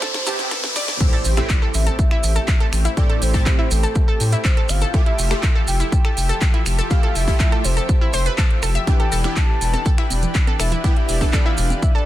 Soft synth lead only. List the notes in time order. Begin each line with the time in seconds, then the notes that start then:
Already playing: C5
0.51 B4
0.76 D5
1.00 C5
1.74 E5
1.99 E5
2.97 D5
3.22 C5
3.71 A4
4.45 C5
4.69 F5
4.94 E5
5.68 G5
5.92 G5
6.91 F5
7.15 E5
7.64 C5
8.87 G5
9.00 G5
9.37 A5
9.49 A5
9.86 G5
10.60 E5
10.84 G5
10.97 E5
11.33 D5
11.46 F5
11.83 E5
11.95 D5